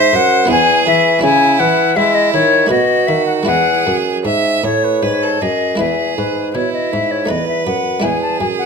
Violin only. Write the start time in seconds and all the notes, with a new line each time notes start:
Already playing: C5
0.50 G#4
1.24 E4
1.97 E4
2.71 F#4
3.47 G#4
4.25 E5
4.63 C#5
5.02 B4
5.22 A4
5.41 G#4
5.80 G#4
6.55 E4
7.30 B4
8.04 G#4